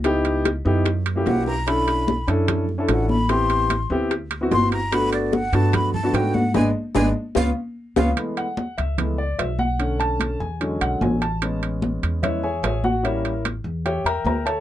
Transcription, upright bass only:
\new Staff \with { instrumentName = "Upright bass" } { \clef bass \time 4/4 \key fis \minor \tempo 4 = 148 cis,4. fis,4. b,,4~ | b,,4. fis,4. a,,4~ | a,,4. d,4. g,,4~ | g,,4. g,4. gis,4 |
gis,,8 r8 gis,,8 r8 cis,8 r4 cis,8 | r4. cis,4. b,,4~ | b,,4. e,4 b,,8 a,,4~ | a,,4. e,4. a,,4~ |
a,,4. e,4 e,8 d,4 | }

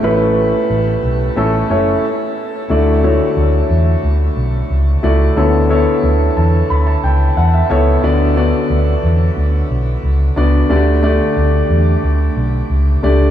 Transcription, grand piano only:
\new Staff \with { instrumentName = "Grand piano" } { \time 4/4 \key d \major \tempo 4 = 90 << { a,4 r2. | d4. r2 r8 | d4. a''8 b''16 a''16 g''8 fis''16 e''16 e''8 | d4. r2 r8 |
d4. r2 r8 | } \\ { <a cis' e' b'>4. r8 <a cis' e' a'>8 <a cis' e' cis''>8 r4 | <a e' fis' d''>8 <a e' fis' cis''>4. r4. <a e' fis' d''>8 | <b e' a' cis''>8 <b e' a' cis''>4. r4. <b e' a' cis''>8 | <b d' fis' d''>8 <b d' fis' d''>4. r4. <b d' fis' d''>8 |
<a d' g' d''>8 <a d' g' d''>4. r4. <a d' g' d''>8 | } >> }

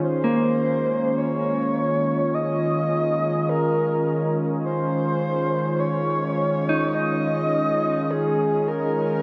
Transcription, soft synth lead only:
\new Staff \with { instrumentName = "Soft synth lead" } { \time 4/4 \key c \phrygian \tempo 4 = 52 c''4 des''4 ees''4 bes'8. r16 | c''4 des''4 ees''4 aes'8 bes'8 | }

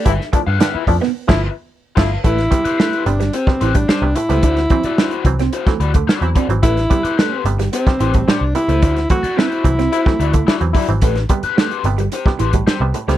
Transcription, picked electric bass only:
\new Staff \with { instrumentName = "Picked electric bass" } { \clef bass \time 4/4 \key a \dorian \tempo 4 = 109 g,,16 r8 g,16 r8 f,16 r8 g,,8 r8. g,,8 | a,,8 r4 g,,8 r8 a,,8 r16 c,16 r16 cis,16 | d,8 r4 c,8 r8 d,8 r16 e,16 r16 gis,,16 | a,,8 r4 g,,8 r8 a,,8 r16 c,16 r16 cis,16 |
d,8 r4 c,8 r8 d,8 r16 e,16 r16 gis,,16 | a,,8 r4 g,,8 r8 a,,8 r16 c,16 r16 cis,16 | }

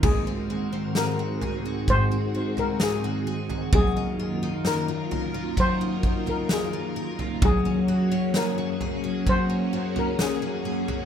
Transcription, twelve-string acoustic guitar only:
\new Staff \with { instrumentName = "Twelve-string acoustic guitar" } { \time 4/4 \key aes \mixolydian \tempo 4 = 65 aes,16 c'16 ges'16 c'16 aes'16 ges'16 aes'16 ges'16 aes,16 c'16 ges'16 c'16 aes'16 ges'16 aes'16 ges'16 | ges16 ees'16 f'16 ees'16 bes'16 f'16 bes'16 f'16 ges16 ees'16 f'16 ees'16 bes'16 f'16 bes'16 f'16 | ges16 des'16 ges'16 des'16 aes'16 ges'16 aes'16 ges'16 ges16 des'16 ges'16 des'16 aes'16 ges'16 aes'16 ges'16 | }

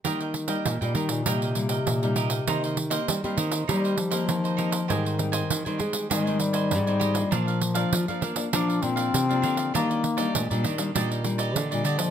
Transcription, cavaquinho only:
\new Staff \with { instrumentName = "Cavaquinho" } { \time 4/4 \key ees \major \tempo 4 = 99 <g' bes' ees'' g''>16 <bes' ees'' g''>16 r16 <bes' ees'' g''>8 <bes' ees'' g''>16 <g' bes' ees'' g''>8 <g' bes' ees'' g''>16 <bes' ees'' g''>16 r16 <bes' ees'' g''>8 <bes' ees'' g''>16 <g' bes' ees'' g''>16 <bes' ees'' g''>16 | <ees' bes' c'' ees''>16 <bes' c'' ees''>16 r16 <bes' c'' ees''>8 <bes' c'' ees''>16 <ees' bes' c'' ees''>8 <ees' bes' c'' ees''>16 <bes' c'' ees''>16 r16 <bes' c'' ees''>8 <bes' c'' ees''>16 <ees' bes' c'' ees''>16 <bes' c'' ees''>16 | <g' c'' ees'' aes''>16 <c'' ees'' aes''>16 r16 <c'' ees'' aes''>8 <c'' ees'' aes''>16 <g' c'' ees'' aes''>8 <g' c'' ees'' aes''>16 <c'' ees'' aes''>16 r16 <c'' ees'' aes''>8 <c'' ees'' aes''>16 <g' c'' ees'' aes''>16 <c'' ees'' aes''>16 | <d' bes' d'' f''>16 <bes' d'' f''>16 r16 <bes' d'' f''>8 <bes' d'' f''>16 <d' bes' d'' f''>8 <d' bes' d'' f''>16 <bes' d'' f''>16 r16 <bes' d'' f''>8 <bes' d'' f''>16 <d' bes' d'' f''>16 <bes' d'' f''>16 |
<d' g' d'' ees''>16 <g' d'' ees''>16 r16 <g' d'' ees''>8 <g' d'' ees''>16 <d' g' d'' ees''>8 <d' g' d'' ees''>16 <g' d'' ees''>16 r16 <g' d'' ees''>8 <g' d'' ees''>16 <d' g' d'' ees''>16 <g' d'' ees''>16 | }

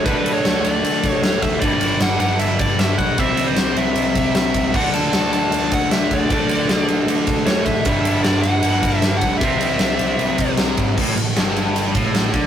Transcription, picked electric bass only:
\new Staff \with { instrumentName = "Picked electric bass" } { \clef bass \time 4/4 \key g \lydian \tempo 4 = 154 d,4 d,8 d,8 d,4 d,8 d,8 | g,,4 g,,8 g,,8 g,,8 g,,8 g,,8 b,,8 | c,4 c,8 c,8 c,4 c,8 c,8 | d,4 d,8 d,8 d,8 d,8 d,8 d,8 |
d,4 d,8 d,8 d,4 d,8 a,,8 | g,,4 g,,8 g,,8 g,,8 g,,8 g,,8 cis,8 | c,4 c,8 c,8 c,4 c,8 gis,,8 | a,,8 a,,8 g,,4. a,,4 d,8 | }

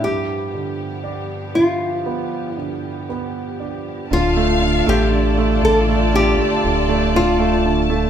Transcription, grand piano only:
\new Staff \with { instrumentName = "Grand piano" } { \clef bass \time 4/4 \key d \dorian \tempo 4 = 59 g,8 d8 d'8 d8 b8 d8 b8 d'8 | d16 a16 d16 a16 d16 a16 d16 a16 d16 a16 d16 a16 d16 a16 d16 a16 | }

